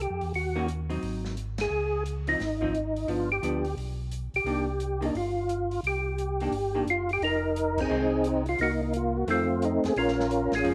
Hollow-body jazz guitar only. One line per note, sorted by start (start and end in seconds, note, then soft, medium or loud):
0.56 0.67 D#3 medium
0.56 0.67 A#3 medium
0.56 0.67 C#4 medium
0.56 0.67 F#4 medium
0.90 1.34 F#3 medium
0.90 1.34 C4 medium
0.90 1.34 D#4 medium
2.28 2.39 F3 soft
2.28 2.39 C4 medium
2.28 2.39 D#4 medium
2.61 2.73 F3 medium
2.61 2.73 C4 medium
2.61 2.73 D#4 medium
3.08 3.28 F3 soft
3.08 3.28 B3 soft
3.08 3.28 D4 soft
3.42 3.62 F3 medium
3.42 3.63 B3 medium
3.42 3.63 D4 medium
4.46 4.66 D#3 medium
4.46 4.66 A#3 medium
4.46 4.66 D4 medium
5.01 5.13 D#3 soft
5.01 5.13 A#3 medium
5.01 5.14 D4 medium
6.41 6.52 D#3 soft
6.41 6.52 A#3 medium
6.41 6.52 D4 medium
6.75 6.86 D#3 medium
6.75 6.86 A#3 medium
6.75 6.86 D4 medium
7.90 8.09 D#3 medium
7.90 8.10 G#3 medium
7.90 8.10 C4 medium
9.28 9.47 D#3 medium
9.28 9.47 A3 medium
9.28 9.47 C4 medium
10.64 10.74 F3 medium
10.64 10.74 G#3 medium
10.64 10.74 C#4 medium